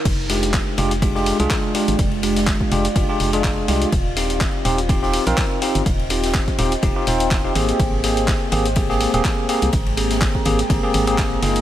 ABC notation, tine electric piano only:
X:1
M:4/4
L:1/16
Q:"Swing 16ths" 1/4=124
K:Fdor
V:1 name="Tine electric piano"
z2 [A,DFG]4 [A,DFG] z [A,DFG] [A,DFG]2 [A,DFA]3 [A,DFG]2 | z2 [A,DFG]4 [A,DFG] z [A,DFG] [A,DFG]2 [A,DFA]3 [A,DFG]2 | z2 [CEFG]4 [CEFG] z [CEFG] [CEFG]2 [CEFB]3 [CEFG]2 | z2 [CEFG]4 [CEFG] z [CEFG] [CEFG] [CEFc]3 [CEFG] [B,CGA]2- |
[B,CGA]2 [B,CGA]4 [B,CGA] z [B,CGA] [B,CGA]2 [B,CGA]3 [B,CGA]2 | z2 [B,CGA]4 [B,CGA] z [B,CGA] [B,CGA]2 [B,CGA]3 [B,EFA]2 |]